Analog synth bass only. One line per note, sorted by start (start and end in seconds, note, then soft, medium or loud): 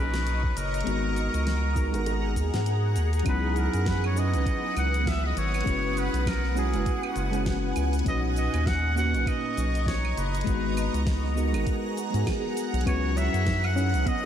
0.00 0.52 B1 medium
0.57 0.82 F#1 loud
0.86 1.29 G#1 loud
1.34 1.95 C#2 medium
1.93 2.37 G#1 medium
2.36 2.50 D#2 medium
2.54 2.98 G#2 medium
2.96 3.22 D#2 loud
3.26 3.68 C#2 loud
3.74 4.35 F#2 medium
4.34 4.44 C#2 medium
4.76 5.33 C#2 medium
5.36 5.62 G#1 loud
5.66 6.08 F#1 loud
6.13 6.75 B1 medium
6.74 6.84 F#1 medium
7.16 7.72 F#1 medium
7.76 8.02 C#2 loud
8.06 8.48 B1 loud
8.54 9.15 D#2 medium
9.14 9.24 B1 medium
9.57 10.13 B1 medium
10.17 10.42 F#1 loud
10.46 10.89 G#1 loud
10.93 11.55 C#2 medium
11.54 11.64 G#1 medium
12.14 12.24 G#2 medium
12.73 12.84 B1 medium
12.86 13.29 C#2 loud
13.33 13.95 F#2 medium
13.93 14.04 C#2 loud